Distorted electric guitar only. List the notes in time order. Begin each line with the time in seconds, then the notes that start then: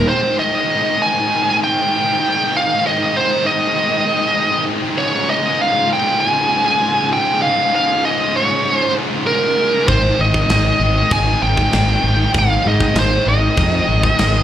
0.06 G#2 D#3
0.13 G#2 D#3
0.22 G#2 D#3
0.29 G#2 D#3
0.36 G#2 D#3
0.44 G#2 D#3
0.52 G#2 D#3
0.60 G#2 D#3
0.67 G#2 D#3
0.75 G#2 D#3
0.82 G#2 D#3
0.90 G#2 D#3
0.97 G#2 D#3
1.05 G#2 D#3
1.13 G#2 D#3
1.21 G#2 D#3
1.28 G#2 D#3
1.36 G#2 D#3
1.44 G#2 D#3
1.51 G#2 D#3
1.58 G#2 D#3
1.66 G#2 D#3
1.74 G#2 D#3
1.81 G#2 D#3
1.89 G#2 D#3
1.97 G#2 D#3
2.05 G#2 D#3
2.12 G#2 D#3
2.19 G#2 D#3
2.27 G#2 D#3
2.35 G#2 D#3
2.42 G#2 D#3
2.51 G#2 D#3
2.59 G#2 D#3
2.67 G#2 D#3
2.74 G#2 D#3
2.81 G#2 D#3
2.89 G#2 D#3
2.97 G#2 D#3
3.05 G#2 D#3
3.14 G#2 D#3
3.21 G#2 D#3
3.28 G#2 D#3
3.36 G#2 D#3
3.43 G#2 D#3
3.51 G#2 D#3
3.59 G#2 D#3
3.67 G#2 D#3
3.74 G#2 D#3
3.81 G#2 D#3
3.89 G#2 D#3
3.97 G#2 D#3
4.06 G#2 D#3
4.13 G#2 D#3
4.20 G#2 D#3
4.28 G#2 D#3
4.34 G#2 D#3
4.43 G#2 D#3
4.51 G#2 D#3
4.58 G#2 D#3
4.65 G#2 D#3
4.74 G#2 D#3
4.81 G#2 D#3
4.89 G#2 D#3
4.97 C#2 G#2
5.05 C#2 G#2
5.12 C#2 G#2
5.20 C#2 G#2
5.27 C#2 G#2
5.35 C#2 G#2
5.42 C#2 G#2
5.50 C#2 G#2
5.56 C#2 G#2
5.66 C#2 G#2
5.73 C#2 G#2
5.81 C#2 G#2
5.88 C#2 G#2
5.96 C#2 G#2
6.03 C#2 G#2
6.11 C#2 G#2
6.19 C#2 G#2
6.26 C#2 G#2
6.33 C#2 G#2
6.40 C#2 G#2
6.48 C#2 G#2
6.56 C#2 G#2
6.64 C#2 G#2
6.72 C#2 G#2
6.80 C#2 G#2
6.87 C#2 G#2
6.95 C#2 G#2
7.02 C#2 G#2
7.10 C#2 G#2
7.17 C#2 G#2
7.26 C#2 G#2
7.33 C#2 G#2
7.42 C#2 G#2
7.50 C#2 G#2
7.57 C#2 G#2
7.65 C#2 G#2
7.73 C#2 G#2
7.80 C#2 G#2
7.87 C#2 G#2
7.96 C#2 G#2
8.04 C#2 G#2
8.11 C#2 G#2
8.18 C#2 G#2
8.26 C#2 G#2
8.34 C#2 G#2
8.41 C#2 G#2
8.49 C#2 G#2
8.57 C#2 G#2
8.64 C#2 G#2
8.72 C#2 G#2
8.80 C#2 G#2
8.88 C#2 G#2
8.94 C#2 G#2
9.02 C#2 G#2
9.09 C#2 G#2
9.17 C#2 G#2
9.25 C#2 G#2
9.32 C#2 G#2
9.40 C#2 G#2
9.48 C#2 G#2
9.55 C#2 G#2
9.62 C#2 G#2
9.72 C#2 G#2
9.79 C#2 G#2
9.87 G#2 D#3
9.95 G#2 D#3
10.03 G#2 D#3
10.10 G#2 D#3
10.18 G#2 D#3
10.25 G#2 D#3
10.33 G#2 D#3
10.41 G#2 D#3
10.48 G#2 D#3
10.55 G#2 D#3
10.64 G#2 D#3
10.71 G#2 D#3
10.79 G#2 D#3
10.86 G#2 D#3
10.94 G#2 D#3
11.02 G#2 D#3
11.08 G#2 D#3
11.18 G#2 D#3
11.24 G#2 D#3
11.32 G#2 D#3
11.40 G#2 D#3
11.48 G#2 D#3
11.56 G#2 D#3
11.62 G#2 D#3
11.70 G#2 D#3
11.78 G#2 D#3
11.86 G#2 D#3
11.93 G#2 D#3
12.01 G#2 D#3
12.09 G#2 D#3
12.17 G#2 D#3
12.23 G#2 D#3
12.33 G#2 D#3
12.41 G#2 D#3
12.49 G#2 D#3
12.56 G#2 D#3
12.64 G#2 D#3
12.70 G#2 D#3
12.79 G#2 D#3
12.87 G#2 D#3
12.95 G#2 D#3
13.01 G#2 D#3
13.10 G#2 D#3
13.17 G#2 D#3
13.25 G#2 D#3
13.33 G#2 D#3
13.40 G#2 D#3
13.48 G#2 D#3
13.56 G#2 D#3
13.64 G#2 D#3
13.71 G#2 D#3
13.78 G#2 D#3
13.86 G#2 D#3
13.94 G#2 D#3
14.02 G#2 D#3
14.10 G#2 D#3
14.17 G#2 D#3
14.25 G#2 D#3
14.32 G#2 D#3